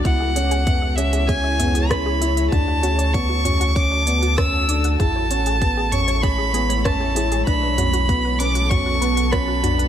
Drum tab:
HH |x-xxx-xxx-xxx-xx|x-xxx-xxx-xxx-xx|x-xxx-xxx-xxx-xx|x-xxx-xxx-xxx-xx|
SD |------------r---|------------r---|------------r---|------------r---|
T2 |----o-----o-----|o-----o-----o---|o-----o-----o---|--o-----o-----o-|
BD |o---o---o---o---|o---o---o---o---|o---o---o---o---|o---o---o---o---|